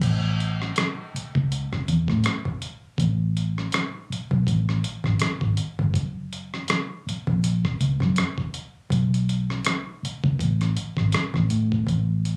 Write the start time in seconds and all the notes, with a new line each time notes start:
0.01 A1, kick, closed hi-hat, crash
0.40 closed hi-hat
0.62 cross-stick
0.76 cross-stick, closed hi-hat
1.14 muted fingered electric bass stroke, closed hi-hat
1.35 C#2, kick
1.52 closed hi-hat
1.73 kick, cross-stick
1.88 E2, closed hi-hat
2.08 A2, kick, cross-stick
2.24 cross-stick, closed hi-hat
2.45 kick
2.62 closed hi-hat
2.98 A1, kick, closed hi-hat
3.37 closed hi-hat
3.58 cross-stick
3.72 cross-stick, closed hi-hat
4.10 muted fingered electric bass stroke, closed hi-hat
4.31 B1, kick
4.47 A1, kick, closed hi-hat
4.69 cross-stick
4.84 closed hi-hat
5.04 G#1, kick, cross-stick
5.19 cross-stick, closed hi-hat
5.41 G#1, kick
5.57 closed hi-hat
5.79 G1, kick
5.94 F#1, kick, closed hi-hat
6.33 closed hi-hat
6.54 cross-stick
6.68 cross-stick, closed hi-hat
7.07 muted fingered electric bass stroke, closed hi-hat
7.27 A#1, kick
7.44 closed hi-hat
7.65 kick, cross-stick
7.80 C#2, closed hi-hat
8.00 F#2, kick, cross-stick
8.16 cross-stick, closed hi-hat
8.38 kick
8.54 closed hi-hat
8.90 B1, kick, closed hi-hat
9.14 closed hi-hat
9.29 closed hi-hat
9.50 cross-stick
9.65 cross-stick, closed hi-hat
10.03 muted fingered electric bass stroke, closed hi-hat
10.24 C#2, kick
10.39 A1, kick, closed hi-hat
10.61 cross-stick, closed hi-hat
10.77 muted fingered electric bass stroke, closed hi-hat
10.97 G#1, kick, cross-stick
11.12 cross-stick, closed hi-hat
11.34 A1, kick, cross-stick
11.50 A2, closed hi-hat
11.72 kick
11.87 A1, kick, closed hi-hat
12.25 closed hi-hat